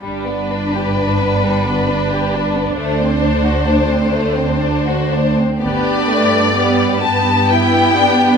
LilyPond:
<<
  \new Staff \with { instrumentName = "Violin section" } { \time 3/4 \key g \major \tempo 4 = 65 b'2. | c''2. | d''4. a''8 g''4 | }
  \new Staff \with { instrumentName = "Violin section" } { \time 3/4 \key g \major g16 b16 d'16 g'16 d'16 b16 g16 b16 d'16 g'16 d'16 b16 | a16 c'16 d'16 fis'16 d'16 c'16 a16 c'16 d'16 fis'16 d'16 c'16 | <g' b'>4 <g' b'>2 | }
  \new Staff \with { instrumentName = "Viola section" } { \time 3/4 \key g \major << { r2. | r2. | d'4 b4 e'8 d'8 | } \\ { d'2.~ | d'2. | b8 a8 g8 b4. | } >> }
  \new Staff \with { instrumentName = "Cello section" } { \clef bass \time 3/4 \key g \major g,2. | d,2. | g,2. | }
  \new Staff \with { instrumentName = "Double bass section" } { \clef bass \time 3/4 \key g \major g,,2. | d,2. | g,,4 r2 | }
>>